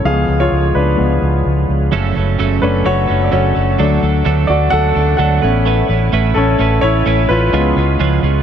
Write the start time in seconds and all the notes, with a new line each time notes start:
0.04 C#2 F3 G#3 B3 G#4 F5
0.28 C#2
0.40 F4 C#5
0.52 C#2
0.75 C#2 D4 B4
0.97 C#2 F3 G#3 B3
1.22 C#2
1.46 C#2
1.69 C#2
1.92 F#1 F#2 C#3 F#3 A3 C#4 A4
2.15 F#1 F#3 A3 C#4 A4
2.38 F#1 F#2 C#3 F#3 A3 C#4 A4
2.62 F#1 F#3 A3 C#4 D4 A4 B4
2.84 F#1 F#3 A3 C#4 F#4 A4 C#5
3.07 F#1 F#3 A3 C#4 A4
3.24 D5
3.31 F#1 F#2 C#3 F#3 A3 C#4 F#4 A4 C#5
3.55 F#1 F#3 A3 C#4 A4
3.78 D2 D3 F#3 A3 D4 A4
4.01 D2 A3 D4 A4
4.25 D2 D3 F#3 A3 D4 A4
4.47 D2 A3 D4 F#4 A4 D5
4.70 D2 F#3 A3 D4 A4 F#5
4.95 D2 A3 D4 A4
5.17 D2 D3 F#3 A3 D4 A4 F#5
5.41 A1 A3 B3 C#4 E4 B4
5.65 A3 C#4 E4 B4
5.88 A1 C#4 E4 B4
6.12 A1 A3 C#4 E4 B4
6.34 A1 C#4 E4 A4 B4
6.58 A1 A3 C#4 E4 B4
6.81 A1 C#4 E4 B4 C#5
7.06 A1 A3 C#4 E4 B4
7.29 A1 C#4 E4 F4 B4
7.52 C#2 C#3 F3 G#3 B3 C#4 F4 B4
7.76 C#2 G#3 C#4 F4 B4
7.99 C#2 C#3 F3 G#3 C#4 F4 B4
8.23 C#2 G#3 C#4 F4 B4